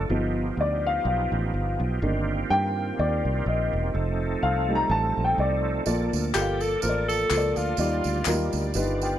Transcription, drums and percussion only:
5.86 tambourine
6.13 tambourine
6.34 clap, tambourine
6.61 tambourine
6.82 tambourine
7.09 tambourine
7.30 clap, tambourine
7.56 tambourine
7.77 tambourine
8.04 tambourine
8.25 clap, tambourine
8.53 tambourine
8.74 tambourine
9.02 tambourine

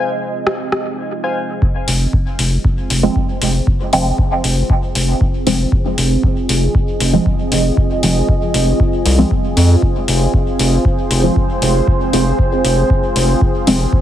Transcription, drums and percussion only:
0.47 cross-stick
0.72 cross-stick
1.62 kick
1.88 open hi-hat
2.13 kick
2.39 open hi-hat
2.65 kick
2.90 open hi-hat
3.16 kick
3.42 open hi-hat
3.67 kick
3.93 open hi-hat
4.18 kick
4.44 open hi-hat
4.70 kick
4.95 open hi-hat
5.21 kick
5.47 open hi-hat
5.72 kick
5.98 open hi-hat
6.23 kick
6.49 open hi-hat
6.75 kick
7.00 open hi-hat
7.26 kick
7.52 open hi-hat
7.77 kick
8.03 open hi-hat
8.29 kick
8.54 open hi-hat
8.80 kick
9.06 open hi-hat
9.31 kick
9.57 open hi-hat
9.82 kick
10.08 open hi-hat
10.34 kick
10.59 open hi-hat
10.85 kick
11.11 open hi-hat
11.36 kick
11.62 open hi-hat
11.88 kick
12.13 open hi-hat
12.39 kick
12.65 open hi-hat
12.90 kick
13.16 open hi-hat
13.41 kick
13.67 open hi-hat
13.93 kick

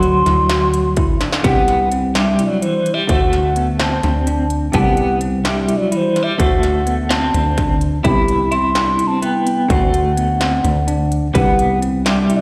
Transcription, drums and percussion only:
0.03 closed hi-hat
0.26 snare, closed hi-hat
0.49 snare, closed hi-hat
0.74 closed hi-hat
0.97 kick, closed hi-hat
1.21 snare, closed hi-hat
1.33 snare
1.44 kick, closed hi-hat
1.68 snare, closed hi-hat
1.92 closed hi-hat
2.15 snare, closed hi-hat
2.39 closed hi-hat
2.62 closed hi-hat
2.86 closed hi-hat
3.09 kick, closed hi-hat
3.33 snare, closed hi-hat
3.56 closed hi-hat
3.80 snare, closed hi-hat
4.03 snare, closed hi-hat
4.27 closed hi-hat
4.50 closed hi-hat
4.73 kick, closed hi-hat
4.97 closed hi-hat
5.21 closed hi-hat
5.45 snare, closed hi-hat
5.69 closed hi-hat
5.92 closed hi-hat
6.16 snare, closed hi-hat
6.40 kick, closed hi-hat
6.63 snare, closed hi-hat
6.87 closed hi-hat
7.10 snare, closed hi-hat
7.34 closed hi-hat
7.58 kick, snare, closed hi-hat
7.81 closed hi-hat
8.05 kick, closed hi-hat
8.28 closed hi-hat
8.52 closed hi-hat
8.75 snare, closed hi-hat
8.99 closed hi-hat
9.22 closed hi-hat
9.47 closed hi-hat
9.70 kick, closed hi-hat
9.94 closed hi-hat
10.17 closed hi-hat
10.41 snare, closed hi-hat
10.65 closed hi-hat
10.88 closed hi-hat
11.12 closed hi-hat
11.35 kick, closed hi-hat
11.59 closed hi-hat
11.82 closed hi-hat
12.06 snare, closed hi-hat
12.30 closed hi-hat

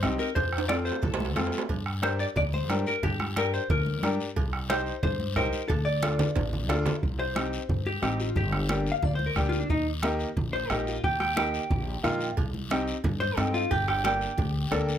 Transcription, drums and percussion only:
0.03 bombo rim, cowbell, high conga, short guiro
0.19 short guiro
0.36 bombo low, cowbell, high conga, high timbale, long guiro
0.53 bombo rim
0.58 high timbale
0.69 bombo rim, cowbell, high conga, high timbale, short guiro
0.86 short guiro
0.92 low timbale
1.02 bombo low, cowbell, high conga, low conga, low timbale, long guiro
1.14 low timbale
1.20 high conga
1.25 low timbale
1.36 bombo rim, cowbell, high conga, low timbale, short guiro
1.47 low timbale
1.52 short guiro
1.58 low timbale
1.69 bombo low, cowbell, high conga, long guiro
1.86 bombo rim
2.03 bombo rim, cowbell, high conga, short guiro
2.19 short guiro
2.36 bombo low, cowbell, high conga, low conga, long guiro
2.53 high conga
2.70 bombo rim, cowbell, high conga, short guiro
2.86 short guiro
3.03 bombo low, cowbell, high conga, low conga, long guiro
3.19 bombo rim, high conga
3.36 bombo rim, cowbell, high conga, short guiro
3.54 short guiro
3.70 bombo low, cowbell, high conga, low conga, long guiro
3.86 high conga
4.03 bombo rim, cowbell, high conga, short guiro
4.20 short guiro
4.36 bombo low, cowbell, high conga, long guiro
4.53 bombo rim
4.70 bombo rim, cowbell, high conga, short guiro
4.86 short guiro
5.03 bombo low, cowbell, high conga, low conga, long guiro
5.20 high conga
5.36 bombo low, bombo rim, cowbell, high conga, short guiro
5.53 short guiro
5.69 bombo low, cowbell, high conga, low conga, long guiro
6.03 bombo rim, cowbell, high conga, short guiro
6.19 low conga, high timbale, short guiro
6.36 bombo low, cowbell, low conga, high timbale, long guiro
6.53 low conga
6.69 bombo rim, cowbell, low conga, low timbale, short guiro
6.86 low conga, low timbale, short guiro
7.03 bombo low, high conga, long guiro
7.36 bombo rim, high conga, short guiro
7.53 short guiro
7.69 bombo low, high conga, low conga, long guiro
7.86 high conga
8.03 bombo rim, high conga, short guiro
8.20 short guiro
8.36 bombo low, high conga, low conga, long guiro
8.52 bombo rim, high conga
8.69 bombo rim, high conga, short guiro
8.87 short guiro
9.03 bombo low, high conga, low conga, long guiro
9.19 high conga
9.36 bombo low, bombo rim, high conga, short guiro
9.52 short guiro
9.69 bombo low, high conga, long guiro
10.03 bombo rim, high conga, short guiro
10.19 short guiro
10.37 bombo low, high conga, low conga, long guiro
10.70 bombo rim, high conga, short guiro
10.87 short guiro
11.04 bombo low, high conga, long guiro
11.20 bombo rim, high conga
11.37 bombo rim, high conga, short guiro
11.54 short guiro
11.70 bombo low, high conga, low conga, long guiro
12.04 bombo rim, high conga, low conga, short guiro
12.20 short guiro
12.37 bombo low, cowbell, high conga, long guiro
12.54 high conga
12.70 bombo rim, cowbell, high conga, short guiro
12.88 short guiro
13.04 bombo low, cowbell, high conga, low conga, long guiro
13.21 high conga
13.37 bombo rim, cowbell, high conga, low timbale, short guiro
13.54 short guiro
13.71 bombo low, cowbell, high conga, long guiro
13.88 bombo rim
14.04 bombo rim, cowbell, high conga, short guiro
14.21 short guiro
14.38 bombo low, cowbell, high conga, low conga, long guiro
14.72 bombo rim, cowbell, high conga, low timbale, short guiro
14.89 short guiro

